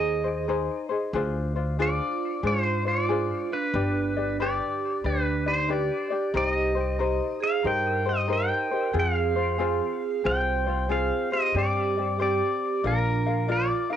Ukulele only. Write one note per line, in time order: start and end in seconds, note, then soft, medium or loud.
0.00 0.25 D#4 medium
0.00 0.24 G#4 medium
0.00 0.25 A#4 medium
0.00 0.23 C5 medium
0.24 0.48 D#4 soft
0.24 0.48 G#4 soft
0.24 0.48 C5 medium
0.48 0.90 D#4 medium
0.48 0.89 G#4 medium
0.48 0.90 A#4 medium
0.48 0.88 C5 medium
0.89 1.14 D#4 soft
0.89 1.13 G#4 medium
0.89 1.13 C5 medium
1.14 1.56 D4 medium
1.14 1.55 F4 medium
1.14 1.55 G#4 medium
1.14 1.54 C5 medium
1.56 1.78 D4 soft
1.56 1.78 F4 medium
1.56 1.79 C5 medium
1.79 2.43 D4 medium
1.79 2.43 F4 medium
1.79 2.42 G#4 medium
1.79 2.44 C5 medium
2.43 2.85 D4 medium
2.43 2.85 F4 medium
2.43 2.85 G#4 medium
2.43 2.84 C5 medium
2.85 3.08 D4 soft
2.85 3.09 F4 medium
2.85 3.09 C5 medium
3.09 3.51 D4 medium
3.09 3.51 F4 medium
3.09 3.50 G#4 medium
3.09 3.51 C5 medium
3.52 3.73 D4 soft
3.52 3.74 F4 soft
3.74 4.16 D4 medium
3.74 4.16 G4 medium
3.74 4.15 B4 medium
3.74 4.15 D5 medium
4.16 4.39 D4 soft
4.16 4.40 G4 soft
4.16 4.39 D5 medium
4.40 5.04 D4 medium
4.40 5.05 G4 medium
4.40 5.03 B4 medium
4.40 5.05 D5 medium
5.04 5.46 D4 medium
5.04 5.46 G4 medium
5.04 5.46 B4 medium
5.04 5.45 D5 medium
5.46 5.69 G4 soft
5.46 5.69 D5 soft
5.69 6.11 D4 medium
5.69 6.10 G4 medium
5.69 6.11 B4 medium
5.69 6.09 D5 medium
6.10 6.35 D4 soft
6.10 6.34 G4 medium
6.10 6.34 D5 soft
6.34 6.76 D#4 medium
6.34 6.75 G4 medium
6.34 6.76 A#4 medium
6.34 6.74 C5 medium
6.75 6.98 D#4 soft
6.75 7.00 G4 soft
6.75 6.99 C5 soft
6.99 7.63 D#4 medium
6.99 7.62 A#4 medium
6.99 7.65 C5 medium
7.63 8.06 D#4 medium
7.63 8.05 G4 medium
7.63 8.05 A#4 medium
7.63 8.04 C5 medium
8.06 8.27 D#4 soft
8.06 8.28 G4 soft
8.06 8.29 C5 medium
8.28 8.71 D#4 medium
8.28 8.71 G4 medium
8.28 8.70 A#4 medium
8.28 8.70 C5 medium
8.71 8.94 D#4 soft
8.71 8.94 G4 soft
8.71 8.94 C5 medium
8.93 9.36 C4 medium
8.93 9.36 F4 medium
8.93 9.36 G#4 medium
8.93 9.35 C5 medium
9.36 9.58 C4 soft
9.36 9.59 F4 medium
9.36 9.59 C5 medium
9.58 10.24 C4 medium
9.58 10.24 F4 medium
9.58 10.23 G#4 medium
9.58 10.25 C5 medium
10.24 10.66 C4 medium
10.24 10.66 F4 medium
10.24 10.66 G#4 medium
10.24 10.65 C5 medium
10.67 10.88 C4 soft
10.67 10.89 F4 soft
10.67 10.90 C5 medium
10.89 11.31 C4 medium
10.89 11.32 F4 medium
10.89 11.31 G#4 medium
10.89 11.31 C5 medium
11.32 11.54 C4 soft
11.32 11.56 F4 soft
11.32 11.54 C5 soft
11.55 11.97 C4 medium
11.55 11.97 G4 medium
11.55 11.96 C5 medium
11.55 11.96 D5 medium
11.97 12.20 C4 soft
11.97 12.19 G4 medium
11.97 12.20 D5 soft
12.20 12.84 C4 medium
12.20 12.85 G4 medium
12.20 12.83 C5 medium
12.20 12.82 D5 medium
12.84 13.26 F4 medium
12.84 13.27 A#4 medium
12.84 13.26 D5 medium
12.84 13.25 F5 medium
13.26 13.48 F4 soft
13.26 13.48 A#4 soft
13.26 13.48 F5 medium
13.48 13.91 F4 medium
13.48 13.90 A#4 medium
13.48 13.91 D5 medium
13.48 13.89 F5 medium
13.90 13.96 F4 soft
13.90 13.96 A#4 soft
13.90 13.96 F5 medium